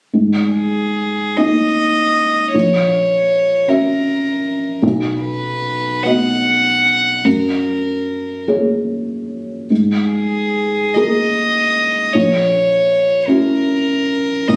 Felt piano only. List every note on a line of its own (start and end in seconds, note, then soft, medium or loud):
0.14 1.33 G#2 soft
1.37 2.50 A#3 soft
1.37 2.50 D#4 soft
1.37 2.50 D#5 soft
2.54 3.64 A#1 soft
3.68 4.79 C#4 soft
3.68 4.79 F#4 soft
3.68 4.79 E5 soft
4.82 6.01 B1 soft
6.05 7.21 B3 soft
6.05 7.21 F#4 soft
6.05 7.22 D#5 soft
7.25 8.44 F#2 soft
8.48 9.66 A#3 soft
8.48 9.66 G#4 soft
8.48 9.66 C#5 soft
9.70 10.92 G#2 soft
10.95 12.10 A#3 soft
10.95 12.11 G#4 soft
10.95 12.11 A#4 soft
12.14 13.25 A#1 soft
13.27 14.44 C#4 soft
13.27 14.44 E4 soft
13.27 14.45 F#4 soft
14.48 14.56 B1 soft